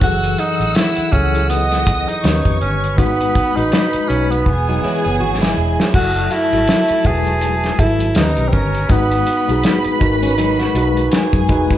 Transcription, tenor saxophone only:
0, 0, Header, 1, 2, 480
1, 0, Start_track
1, 0, Tempo, 740741
1, 8, Time_signature, 4, 2, 24, 8
1, 7633, End_track
2, 0, Start_track
2, 0, Title_t, "Tenor saxophone"
2, 0, Program_c, 0, 66
2, 21, Note_on_c, 0, 66, 111
2, 253, Note_on_c, 0, 63, 95
2, 263, Note_off_c, 0, 66, 0
2, 489, Note_on_c, 0, 64, 96
2, 499, Note_off_c, 0, 63, 0
2, 725, Note_on_c, 0, 61, 87
2, 735, Note_off_c, 0, 64, 0
2, 963, Note_off_c, 0, 61, 0
2, 967, Note_on_c, 0, 59, 90
2, 1348, Note_on_c, 0, 63, 92
2, 1357, Note_off_c, 0, 59, 0
2, 1686, Note_off_c, 0, 63, 0
2, 1690, Note_on_c, 0, 61, 76
2, 1930, Note_on_c, 0, 59, 93
2, 1939, Note_off_c, 0, 61, 0
2, 2306, Note_on_c, 0, 63, 88
2, 2316, Note_off_c, 0, 59, 0
2, 2646, Note_on_c, 0, 61, 81
2, 2656, Note_off_c, 0, 63, 0
2, 2790, Note_on_c, 0, 59, 71
2, 2799, Note_off_c, 0, 61, 0
2, 3609, Note_off_c, 0, 59, 0
2, 3857, Note_on_c, 0, 66, 109
2, 4093, Note_on_c, 0, 64, 92
2, 4103, Note_off_c, 0, 66, 0
2, 4578, Note_on_c, 0, 68, 107
2, 4587, Note_off_c, 0, 64, 0
2, 5048, Note_on_c, 0, 64, 90
2, 5057, Note_off_c, 0, 68, 0
2, 5295, Note_on_c, 0, 63, 84
2, 5304, Note_off_c, 0, 64, 0
2, 5500, Note_on_c, 0, 60, 58
2, 5509, Note_off_c, 0, 63, 0
2, 5528, Note_on_c, 0, 61, 82
2, 5538, Note_off_c, 0, 60, 0
2, 5774, Note_on_c, 0, 59, 87
2, 5783, Note_off_c, 0, 61, 0
2, 6490, Note_off_c, 0, 59, 0
2, 7633, End_track
0, 0, End_of_file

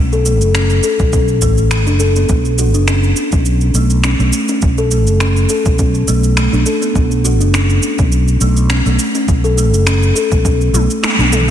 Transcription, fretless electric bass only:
0, 0, Header, 1, 2, 480
1, 0, Start_track
1, 0, Key_signature, 2, "minor"
1, 0, Tempo, 582524
1, 1892, Time_signature, 4, 2, 24, 8
1, 9480, End_track
2, 0, Start_track
2, 0, Title_t, "Fretless electric bass"
2, 0, Program_c, 0, 35
2, 0, Note_on_c, 0, 35, 89
2, 339, Note_off_c, 0, 35, 0
2, 339, Note_on_c, 0, 30, 77
2, 648, Note_off_c, 0, 30, 0
2, 820, Note_on_c, 0, 35, 80
2, 1168, Note_off_c, 0, 35, 0
2, 1168, Note_on_c, 0, 33, 72
2, 1537, Note_off_c, 0, 33, 0
2, 1537, Note_on_c, 0, 30, 94
2, 1847, Note_off_c, 0, 30, 0
2, 1890, Note_on_c, 0, 35, 82
2, 2255, Note_off_c, 0, 35, 0
2, 2255, Note_on_c, 0, 30, 73
2, 2566, Note_off_c, 0, 30, 0
2, 2741, Note_on_c, 0, 35, 82
2, 3049, Note_off_c, 0, 35, 0
2, 3082, Note_on_c, 0, 35, 73
2, 3408, Note_off_c, 0, 35, 0
2, 3454, Note_on_c, 0, 35, 81
2, 3541, Note_off_c, 0, 35, 0
2, 3811, Note_on_c, 0, 35, 86
2, 4177, Note_off_c, 0, 35, 0
2, 4177, Note_on_c, 0, 30, 74
2, 4487, Note_off_c, 0, 30, 0
2, 4662, Note_on_c, 0, 35, 79
2, 4969, Note_off_c, 0, 35, 0
2, 5012, Note_on_c, 0, 35, 71
2, 5332, Note_off_c, 0, 35, 0
2, 5380, Note_on_c, 0, 35, 89
2, 5464, Note_off_c, 0, 35, 0
2, 5730, Note_on_c, 0, 35, 87
2, 6098, Note_off_c, 0, 35, 0
2, 6098, Note_on_c, 0, 30, 75
2, 6408, Note_off_c, 0, 30, 0
2, 6583, Note_on_c, 0, 35, 77
2, 6890, Note_off_c, 0, 35, 0
2, 6928, Note_on_c, 0, 35, 76
2, 7251, Note_off_c, 0, 35, 0
2, 7299, Note_on_c, 0, 35, 86
2, 7384, Note_off_c, 0, 35, 0
2, 7650, Note_on_c, 0, 35, 97
2, 8019, Note_off_c, 0, 35, 0
2, 8019, Note_on_c, 0, 30, 76
2, 8328, Note_off_c, 0, 30, 0
2, 8501, Note_on_c, 0, 35, 82
2, 8809, Note_off_c, 0, 35, 0
2, 8845, Note_on_c, 0, 35, 83
2, 8948, Note_off_c, 0, 35, 0
2, 9217, Note_on_c, 0, 35, 81
2, 9480, Note_off_c, 0, 35, 0
2, 9480, End_track
0, 0, End_of_file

